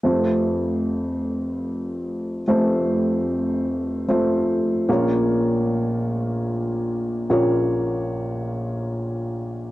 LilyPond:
<<
  \new Staff \with { instrumentName = "Upright piano" } { \time 3/4 \key f \phrygian \tempo 4 = 74 <a c' f' c''>2. | <a c' f' c''>2 <a c' f' c''>4 | <bes des' f' des''>2. | <bes des' f' des''>2. | }
  \new Staff \with { instrumentName = "Upright piano" } { \clef bass \time 3/4 \key f \phrygian <f,, f,>2. | <f,, f,>2. | <bes,, bes,>2. | <bes,, bes,>2. | }
>>